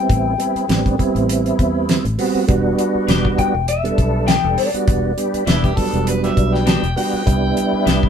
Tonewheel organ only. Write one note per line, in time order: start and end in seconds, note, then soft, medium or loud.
0.00 0.33 G3 medium
0.00 0.33 B3 medium
0.00 0.34 C4 medium
0.00 0.34 E4 medium
0.38 0.65 G3 medium
0.38 0.65 B3 medium
0.38 0.65 C4 medium
0.38 0.66 E4 medium
0.68 0.95 G3 medium
0.68 0.95 B3 medium
0.68 0.96 C4 medium
0.68 0.96 D4 medium
0.98 2.05 G3 medium
0.98 2.05 B3 medium
0.98 2.05 C4 medium
0.98 2.05 E4 loud
2.18 2.45 G3 medium
2.18 2.45 B3 medium
2.18 2.45 C4 medium
2.18 2.45 F#4 loud
2.47 3.54 G3 loud
2.47 3.54 B3 medium
2.47 3.54 D4 medium
2.47 3.54 F#4 loud
3.84 4.35 G3 medium
3.84 4.36 B3 medium
3.84 4.36 D4 medium
3.84 4.36 A4 medium
4.43 4.69 G3 medium
4.43 4.70 B3 medium
4.43 4.70 D4 medium
4.43 4.70 A4 medium
4.74 5.12 G3 medium
4.74 5.12 B3 medium
4.74 5.12 D4 medium
4.74 5.12 F#4 medium
5.17 5.44 G3 medium
5.17 5.44 B3 medium
5.17 5.44 D4 medium
5.17 5.44 G4 medium
5.46 5.73 G3 medium
5.46 5.73 B3 medium
5.46 5.73 D4 medium
5.46 5.74 E4 medium
5.76 6.83 F#3 medium
5.76 6.83 G3 medium
5.76 6.83 B3 medium
5.76 6.83 D4 medium
6.96 7.23 G3 medium
6.96 7.23 B3 medium
6.96 7.23 D4 medium
6.96 7.23 F#4 loud
7.25 8.09 G3 medium
7.25 8.09 B3 medium
7.25 8.09 D4 medium
7.25 8.09 E4 loud